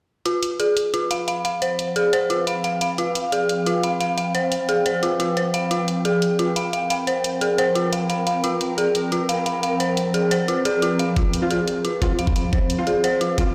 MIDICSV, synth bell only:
0, 0, Header, 1, 2, 480
1, 0, Start_track
1, 0, Key_signature, -4, "minor"
1, 0, Tempo, 340909
1, 359, Time_signature, 4, 2, 24, 8
1, 19074, End_track
2, 0, Start_track
2, 0, Title_t, "Synth bell"
2, 0, Program_c, 0, 98
2, 359, Note_on_c, 0, 65, 79
2, 450, Note_off_c, 0, 65, 0
2, 839, Note_on_c, 0, 68, 72
2, 1065, Note_off_c, 0, 68, 0
2, 1318, Note_on_c, 0, 65, 75
2, 1545, Note_off_c, 0, 65, 0
2, 1559, Note_on_c, 0, 77, 71
2, 1782, Note_off_c, 0, 77, 0
2, 1799, Note_on_c, 0, 77, 73
2, 1890, Note_off_c, 0, 77, 0
2, 2039, Note_on_c, 0, 77, 73
2, 2190, Note_off_c, 0, 77, 0
2, 2279, Note_on_c, 0, 72, 78
2, 2430, Note_off_c, 0, 72, 0
2, 2759, Note_on_c, 0, 68, 74
2, 2985, Note_off_c, 0, 68, 0
2, 2999, Note_on_c, 0, 72, 94
2, 3225, Note_off_c, 0, 72, 0
2, 3238, Note_on_c, 0, 65, 76
2, 3465, Note_off_c, 0, 65, 0
2, 3479, Note_on_c, 0, 77, 73
2, 3705, Note_off_c, 0, 77, 0
2, 3719, Note_on_c, 0, 77, 73
2, 3810, Note_off_c, 0, 77, 0
2, 3959, Note_on_c, 0, 77, 73
2, 4110, Note_off_c, 0, 77, 0
2, 4200, Note_on_c, 0, 65, 77
2, 4290, Note_off_c, 0, 65, 0
2, 4680, Note_on_c, 0, 68, 74
2, 4905, Note_off_c, 0, 68, 0
2, 5160, Note_on_c, 0, 65, 78
2, 5386, Note_off_c, 0, 65, 0
2, 5400, Note_on_c, 0, 77, 72
2, 5621, Note_off_c, 0, 77, 0
2, 5638, Note_on_c, 0, 77, 73
2, 5729, Note_off_c, 0, 77, 0
2, 5879, Note_on_c, 0, 77, 73
2, 6030, Note_off_c, 0, 77, 0
2, 6120, Note_on_c, 0, 72, 77
2, 6270, Note_off_c, 0, 72, 0
2, 6599, Note_on_c, 0, 68, 73
2, 6825, Note_off_c, 0, 68, 0
2, 6840, Note_on_c, 0, 72, 93
2, 7066, Note_off_c, 0, 72, 0
2, 7078, Note_on_c, 0, 65, 76
2, 7301, Note_off_c, 0, 65, 0
2, 7318, Note_on_c, 0, 65, 93
2, 7545, Note_off_c, 0, 65, 0
2, 7559, Note_on_c, 0, 72, 74
2, 7710, Note_off_c, 0, 72, 0
2, 7798, Note_on_c, 0, 77, 74
2, 8025, Note_off_c, 0, 77, 0
2, 8038, Note_on_c, 0, 65, 79
2, 8129, Note_off_c, 0, 65, 0
2, 8518, Note_on_c, 0, 68, 74
2, 8745, Note_off_c, 0, 68, 0
2, 8998, Note_on_c, 0, 65, 76
2, 9225, Note_off_c, 0, 65, 0
2, 9237, Note_on_c, 0, 77, 73
2, 9461, Note_off_c, 0, 77, 0
2, 9478, Note_on_c, 0, 77, 74
2, 9569, Note_off_c, 0, 77, 0
2, 9718, Note_on_c, 0, 77, 74
2, 9869, Note_off_c, 0, 77, 0
2, 9958, Note_on_c, 0, 72, 78
2, 10109, Note_off_c, 0, 72, 0
2, 10438, Note_on_c, 0, 68, 74
2, 10665, Note_off_c, 0, 68, 0
2, 10678, Note_on_c, 0, 72, 95
2, 10905, Note_off_c, 0, 72, 0
2, 10918, Note_on_c, 0, 65, 77
2, 11145, Note_off_c, 0, 65, 0
2, 11159, Note_on_c, 0, 77, 74
2, 11382, Note_off_c, 0, 77, 0
2, 11399, Note_on_c, 0, 77, 73
2, 11490, Note_off_c, 0, 77, 0
2, 11639, Note_on_c, 0, 77, 73
2, 11790, Note_off_c, 0, 77, 0
2, 11879, Note_on_c, 0, 65, 78
2, 11970, Note_off_c, 0, 65, 0
2, 12359, Note_on_c, 0, 68, 74
2, 12585, Note_off_c, 0, 68, 0
2, 12840, Note_on_c, 0, 65, 77
2, 13066, Note_off_c, 0, 65, 0
2, 13079, Note_on_c, 0, 77, 71
2, 13305, Note_off_c, 0, 77, 0
2, 13320, Note_on_c, 0, 77, 73
2, 13410, Note_off_c, 0, 77, 0
2, 13560, Note_on_c, 0, 77, 74
2, 13710, Note_off_c, 0, 77, 0
2, 13799, Note_on_c, 0, 72, 78
2, 13950, Note_off_c, 0, 72, 0
2, 14279, Note_on_c, 0, 68, 73
2, 14505, Note_off_c, 0, 68, 0
2, 14519, Note_on_c, 0, 72, 96
2, 14745, Note_off_c, 0, 72, 0
2, 14759, Note_on_c, 0, 65, 77
2, 14985, Note_off_c, 0, 65, 0
2, 14999, Note_on_c, 0, 68, 94
2, 15150, Note_off_c, 0, 68, 0
2, 15240, Note_on_c, 0, 65, 72
2, 15390, Note_off_c, 0, 65, 0
2, 15479, Note_on_c, 0, 77, 74
2, 15630, Note_off_c, 0, 77, 0
2, 15720, Note_on_c, 0, 65, 80
2, 15810, Note_off_c, 0, 65, 0
2, 16199, Note_on_c, 0, 68, 73
2, 16425, Note_off_c, 0, 68, 0
2, 16679, Note_on_c, 0, 65, 77
2, 16905, Note_off_c, 0, 65, 0
2, 16919, Note_on_c, 0, 72, 72
2, 17070, Note_off_c, 0, 72, 0
2, 17160, Note_on_c, 0, 77, 75
2, 17250, Note_off_c, 0, 77, 0
2, 17400, Note_on_c, 0, 77, 73
2, 17550, Note_off_c, 0, 77, 0
2, 17640, Note_on_c, 0, 72, 77
2, 17790, Note_off_c, 0, 72, 0
2, 18119, Note_on_c, 0, 68, 76
2, 18345, Note_off_c, 0, 68, 0
2, 18359, Note_on_c, 0, 72, 97
2, 18585, Note_off_c, 0, 72, 0
2, 18599, Note_on_c, 0, 65, 77
2, 18825, Note_off_c, 0, 65, 0
2, 18840, Note_on_c, 0, 77, 74
2, 19063, Note_off_c, 0, 77, 0
2, 19074, End_track
0, 0, End_of_file